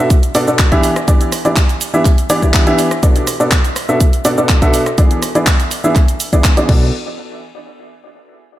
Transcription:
0.00 upright piano B2 B3 D4 F#4 A4 E5
0.10 kick, closed hi-hat, shaker
0.23 closed hi-hat, shaker
0.35 upright piano B2 B3 D4 F#4 A4 D5, open hi-hat, shaker
0.47 upright piano B2 B3 D4 F#4 A4 D5, shaker
0.59 kick, clap, closed hi-hat, shaker
0.72 upright piano E3 B3 D4 E4 G4 E5, kick, closed hi-hat, shaker
0.83 open hi-hat, shaker
0.96 cross-stick, closed hi-hat, shaker
1.08 upright piano E3 B3 D4 E4 G4 D5, kick, closed hi-hat, shaker
1.21 closed hi-hat, shaker
1.32 cross-stick, open hi-hat, shaker
1.45 upright piano E3 B3 D4 E4 G4 D5, closed hi-hat, shaker
1.56 kick, clap, closed hi-hat, shaker
1.69 closed hi-hat, shaker
1.81 open hi-hat, shaker
1.94 upright piano E3 B3 D4 E4 G4 E5, shaker
2.05 kick, clap, closed hi-hat, shaker
2.18 closed hi-hat, shaker
2.30 upright piano E3 B3 D4 E4 G4 D5, open hi-hat, shaker
2.42 upright piano E3 B3 D4 E4 G4 D5, kick, shaker
2.54 kick, clap, closed hi-hat, shaker
2.67 upright piano E3 B3 D4 E4 G4 E5, closed hi-hat, shaker
2.79 open hi-hat, shaker
2.91 cross-stick, closed hi-hat, shaker
3.03 upright piano B2 B3 D4 F#4 A4 D5, kick, closed hi-hat, shaker
3.16 closed hi-hat, shaker
3.27 cross-stick, open hi-hat, shaker
3.40 upright piano B2 B3 D4 F#4 A4 D5, shaker
3.51 kick, clap, closed hi-hat, shaker
3.65 closed hi-hat, shaker
3.76 cross-stick, open hi-hat, shaker
3.89 upright piano B2 B3 D4 F#4 A4 E5, shaker
4.00 kick, closed hi-hat, shaker
4.13 closed hi-hat, shaker
4.25 upright piano B2 B3 D4 F#4 A4 D5, open hi-hat, shaker
4.38 upright piano B2 B3 D4 F#4 A4 D5, shaker
4.49 kick, clap, closed hi-hat, shaker
4.62 upright piano B2 B3 D4 F#4 A4 E5, kick, closed hi-hat, shaker
4.74 open hi-hat, shaker
4.86 cross-stick, closed hi-hat, shaker
4.98 upright piano E3 B3 D4 E4 G#4 D5, kick, closed hi-hat, shaker
5.11 closed hi-hat, shaker
5.22 cross-stick, open hi-hat, shaker
5.35 upright piano E3 B3 D4 E4 G#4 D5, closed hi-hat, shaker
5.47 kick, clap, closed hi-hat, shaker
5.60 closed hi-hat, shaker
5.71 open hi-hat, shaker
5.84 upright piano E3 B3 D4 E4 G#4 E5, shaker
5.95 kick, clap, closed hi-hat, shaker
6.08 closed hi-hat, shaker
6.20 open hi-hat, shaker
6.33 upright piano E3 B3 D4 E4 G#4 D5, kick, closed hi-hat, shaker
6.44 kick, clap, closed hi-hat, shaker
6.57 upright piano E3 B3 D4 E4 G#4 D5, closed hi-hat, shaker
6.69 analog synth bass B1, upright piano B3 D4 F#4 A4 D5, kick, crash

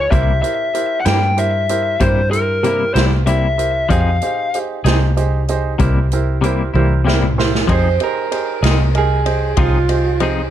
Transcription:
Already playing: lead electric guitar C#5
0.11 fingered electric bass C2, clean electric guitar C3 G3 A#3 E4, upright piano E4 G4 A#4 C5, lead electric guitar E5, kick, closed hi-hat
0.42 upright piano E4 G4 A#4 C5, lead electric guitar E5, closed hi-hat
0.74 upright piano E4 G4 A#4 C5, closed hi-hat
1.00 lead electric guitar F#5
1.05 fingered electric bass G2, clean electric guitar G3 A#3 E4, upright piano E4 G4 A#4 C5, lead electric guitar G5, snare, closed hi-hat
1.37 upright piano E4 G4 A#4 C5, lead electric guitar E5, closed hi-hat
1.69 upright piano E4 G4 A#4 C5, closed hi-hat
2.00 fingered electric bass G2, clean electric guitar C3 G3 A#3 E4, upright piano E4 G4 A#4 C5, lead electric guitar C5, kick, closed hi-hat
2.31 upright piano E4 G4 A#4 C5, lead electric guitar A#4, closed hi-hat
2.63 clean electric guitar C3 G3 A#3 E4, upright piano E4 G4 A#4 C5, closed hi-hat
2.94 fingered electric bass C2, clean electric guitar A#3 E4, upright piano E4 G4 A#4 C5, lead electric guitar C5, snare, closed hi-hat
2.99 clean electric guitar G3
3.26 clean electric guitar C3 G3 A#3 E4, upright piano E4 G4 A#4 C5, lead electric guitar E5, closed hi-hat
3.58 upright piano E4 G4 A#4 C5, closed hi-hat
3.89 fingered electric bass F2, clean electric guitar F3 C4 D#4 G#4, upright piano D#4 G4 G#4 C5, lead electric guitar F5, kick, closed hi-hat
4.22 upright piano D#4 G4 G#4 C5, closed hi-hat
4.54 upright piano D#4 G4 G#4 C5, closed hi-hat
4.84 fingered electric bass C2, clean electric guitar C4 D#4 G#4, upright piano D#4 G4 G#4 C5, snare, closed hi-hat
5.17 upright piano D#4 G4 G#4 C5, closed hi-hat
5.48 upright piano D#4 G4 G#4 C5, closed hi-hat
5.79 fingered electric bass C2, clean electric guitar C3 G3 A#3 E4, upright piano E4 G4 A#4 C5, kick, closed hi-hat
6.12 upright piano E4 G4 A#4 C5, closed hi-hat
6.41 clean electric guitar C3 G3 A#3 E4, upright piano E4 G4 A#4 C5, closed hi-hat
6.74 fingered electric bass C2, clean electric guitar G3 A#3 E4, upright piano E4 G4 A#4 C5, high tom
7.05 clean electric guitar C3 G3 A#3 E4, upright piano E4 G4 A#4 C5 E5, snare
7.22 mid tom
7.38 upright piano E4 G4 A#4 C5 C6, snare
7.55 snare
7.67 fingered electric bass F2, clean electric guitar F3 C4 D#4 G#4, upright piano D#4 G4 G#4 C5, kick, ride
7.72 clean electric guitar C5
8.00 upright piano D#4 G4 G#4 C5, clean electric guitar A#4, ride
8.31 upright piano D#4 G4 G#4 C5, ride
8.62 fingered electric bass C2, clean electric guitar C4 D#4 G#4, upright piano D#4 G4 G#4 A#4, snare, ride
8.95 upright piano D#4 G4 G#4 A#4, clean electric guitar G#4, ride
9.26 upright piano D#4 G4 G#4 C5, ride
9.57 fingered electric bass C2, clean electric guitar F3 C4 D#4 F4 G#4, upright piano D#4 G4 G#4 C5, kick, ride
9.89 upright piano D#4 G4 G#4 C5, ride
10.20 clean electric guitar F3 C4 D#4 G#4, upright piano D#4 G4 G#4 C5, ride

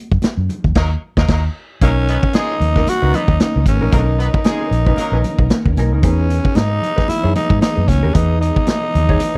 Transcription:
0.11 fingered electric bass F#2, kick
0.22 muted fingered electric bass stroke, snare, closed hi-hat, high conga
0.37 fingered electric bass F#2
0.49 closed hi-hat, low conga
0.64 fingered electric bass D#2, kick
0.75 fingered electric bass D#2, horn section F#3 A#3 D#4 A#4, kick, snare, crash
1.17 fingered electric bass D#2, horn section F#3 A#3 D#4 A#4, kick, snare
1.28 fingered electric bass D#2, horn section F#3 A#3 D#4 A#4, kick, snare, crash
1.81 fingered electric bass B1, string machine D#3 B3 C#4 A#4, horn section F#3 A#3 D#4 A#4, hollow-body jazz guitar C#4 D#4 A#4, tenor saxophone C#4, kick, closed hi-hat, muted conga
2.08 horn section F#3 B3 D#4 B4, closed hi-hat
2.23 muted hollow-body jazz guitar stroke, kick
2.33 horn section G#3 F4 G#4, tenor saxophone D#4, muted hollow-body jazz guitar stroke, snare, closed hi-hat, high conga
2.52 muted hollow-body jazz guitar stroke
2.60 fingered electric bass D#2, closed hi-hat, low conga
2.76 hollow-body jazz guitar C#4 D#4 A#4, kick, snare
2.87 tenor saxophone F#4, muted fingered electric bass stroke, muted hollow-body jazz guitar stroke, closed hi-hat, muted conga
3.00 fingered electric bass C#2, horn section F#3 A#3 D#4 A#4, hollow-body jazz guitar C#4 D#4 B4
3.13 horn section F#3 B3 D#4 B4, tenor saxophone D#4, muted hollow-body jazz guitar stroke, closed hi-hat, muted conga, low conga
3.28 fingered electric bass D#2, muted hollow-body jazz guitar stroke, kick
3.40 tenor saxophone D#4, muted hollow-body jazz guitar stroke, snare, closed hi-hat, high conga
3.56 fingered electric bass C#2, muted hollow-body jazz guitar stroke
3.66 fingered electric bass G#1, tenor saxophone C#4, kick, snare, closed hi-hat, high conga
3.81 fingered electric bass A#1, hollow-body jazz guitar C#4 D#4 A#4
3.92 fingered electric bass B1, horn section F#3 A#3 D#4 A#4, hollow-body jazz guitar C#4 D#4 A#4, tenor saxophone D#4, kick, closed hi-hat, muted conga
4.18 horn section F#3 B3 D#4 B4, tenor saxophone D#4, closed hi-hat
4.34 muted hollow-body jazz guitar stroke, kick
4.44 horn section G#3 F4 G#4, muted hollow-body jazz guitar stroke, snare, closed hi-hat, high conga
4.61 muted hollow-body jazz guitar stroke
4.71 fingered electric bass A#1, closed hi-hat
4.86 hollow-body jazz guitar C#4 D#4 B4, kick
4.96 horn section F#3 A#3 D#4 A#4, muted fingered electric bass stroke, closed hi-hat, muted conga
5.12 fingered electric bass A#1, hollow-body jazz guitar C#4 D#4 B4
5.24 muted hollow-body jazz guitar stroke, closed hi-hat, muted conga, low conga
5.39 fingered electric bass B1, muted hollow-body jazz guitar stroke, kick
5.50 muted hollow-body jazz guitar stroke, snare, closed hi-hat, high conga
5.66 fingered electric bass D#2, muted hollow-body jazz guitar stroke, kick
5.77 fingered electric bass B1, hollow-body jazz guitar C#4 D#4 A#4, snare, closed hi-hat, high conga
5.92 fingered electric bass C#2, hollow-body jazz guitar C#4 D#4 A#4
6.02 fingered electric bass E2, string machine E3 D#4 G#4, tenor saxophone C#4, hollow-body jazz guitar D#4 G#4 B4, kick, closed hi-hat, muted conga
6.30 closed hi-hat
6.45 muted hollow-body jazz guitar stroke, kick
6.55 fingered electric bass G#2, tenor saxophone D#4, muted hollow-body jazz guitar stroke, snare, closed hi-hat, high conga
6.71 muted hollow-body jazz guitar stroke
6.82 closed hi-hat, low conga
6.96 hollow-body jazz guitar D#4 G#4 B4, kick, snare
7.08 tenor saxophone E4, muted hollow-body jazz guitar stroke, muted fingered electric bass stroke, closed hi-hat, muted conga
7.24 fingered electric bass F#2, hollow-body jazz guitar D#4 G#4 C#5
7.35 tenor saxophone D#4, muted hollow-body jazz guitar stroke, closed hi-hat, muted conga, low conga
7.50 fingered electric bass G#2, muted hollow-body jazz guitar stroke, kick
7.61 tenor saxophone D#4, muted hollow-body jazz guitar stroke, snare, closed hi-hat, high conga
7.76 fingered electric bass F#2, muted hollow-body jazz guitar stroke
7.88 fingered electric bass C#2, tenor saxophone C#4, kick, snare, closed hi-hat, high conga
8.03 fingered electric bass D#2, hollow-body jazz guitar D#4 G#4 B4
8.14 fingered electric bass E2, hollow-body jazz guitar D#4 G#4 B4, tenor saxophone D#4, kick, closed hi-hat, muted conga
8.41 tenor saxophone D#4, closed hi-hat
8.55 muted hollow-body jazz guitar stroke, kick
8.67 muted hollow-body jazz guitar stroke, snare, closed hi-hat, high conga
8.83 muted hollow-body jazz guitar stroke
8.94 fingered electric bass D#2, closed hi-hat, low conga
9.09 hollow-body jazz guitar D#4 G#4 C#5, kick
9.20 muted fingered electric bass stroke, muted hollow-body jazz guitar stroke, closed hi-hat, muted conga

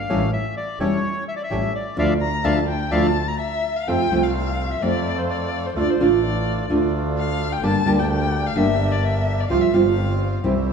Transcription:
Already playing: bandoneon F5
0.09 double bass A1, nylon-string guitar E3 G3 C#4 E4, bandoneon A3 C#4 G4
0.33 bandoneon E5
0.57 bandoneon D5
0.80 double bass E1, nylon-string guitar E3 G3 C#4 E4, bandoneon A3 C#4 G4 C#5
1.28 bandoneon E5
1.36 bandoneon D5
1.44 bandoneon E5
1.50 double bass A1, nylon-string guitar E3 G3 C#4 E4, bandoneon A3 C#4 G4
1.75 bandoneon D5
1.97 double bass D2, nylon-string guitar F3 A3 D4, bandoneon D4 E4 F4 D5 E5 F5
2.21 violin A#5
2.44 double bass D2, nylon-string guitar F3 A3 D4, bandoneon D4 E4 F4 D5 E5 F5, violin A5
2.69 violin G5
2.91 double bass D2, nylon-string guitar F3 A3 D4, bandoneon D4 E4 F4 D5 E5 F5, violin A5
3.28 violin A#5
3.40 violin E5
3.76 violin F5
3.87 double bass F2, nylon-string guitar C3 F3 A3 C4 F4, bandoneon A3 C4 F4, violin G5
4.10 double bass C2, nylon-string guitar C3 F3 A3 C4 F4, bandoneon A3 C4 F4
4.23 violin F5
4.36 violin F5
4.71 violin E5
4.80 double bass F2, nylon-string guitar C3 F3 A3 C4 F4, bandoneon A3 C4 F4, violin D5
5.18 violin C5
5.30 violin D5
5.66 violin C5
5.75 double bass D2, nylon-string guitar D3 A3 D4 F4, bandoneon A3 D4 F4, violin D5
5.90 violin C5
5.99 double bass A1, nylon-string guitar D3 A3 D4 F4, bandoneon A3 D4 F4, violin D5
6.69 double bass D2, nylon-string guitar D3 A3 D4 F4, bandoneon A3 D4 F4
7.18 violin F5
7.53 violin G5
7.62 double bass G1, nylon-string guitar D3 G3 A#3 D4 G4, bandoneon A#3 D4 G4, violin A5
7.85 double bass D2, nylon-string guitar D3 G3 A#3 D4 G4, bandoneon A#3 D4 G4
7.99 violin G5
8.11 violin G5
8.46 violin F5
8.55 double bass G1, nylon-string guitar D3 G3 A#3 D4 G4, bandoneon A#3 D4 G4, violin E5
8.92 violin D5
9.04 violin E5
9.40 violin D5
9.49 double bass C2, nylon-string guitar C3 F3 G3 C4 F4, bandoneon C4 F4 G4, violin F5
9.62 violin E5
9.71 double bass G1, nylon-string guitar C3 F3 G3 C4 F4, bandoneon C4 F4 G4, violin F5
10.43 double bass C2, nylon-string guitar C3 E3 G3 C4 E4, bandoneon C4 E4 G4

